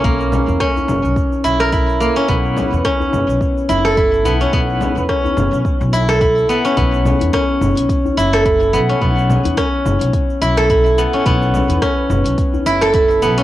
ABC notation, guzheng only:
X:1
M:4/4
L:1/16
Q:"Swing 16ths" 1/4=107
K:F#phr
V:1 name="Guzheng"
^A, z3 C4 z2 E ^A E z A, C | B, z3 C4 z2 E A E z B, C | B, z3 C4 z2 E A E z B, C | B, z3 C4 z2 E A E z B, C |
B, z3 C4 z2 E A E z B, C | B, z3 C4 z2 E A E z B, C |]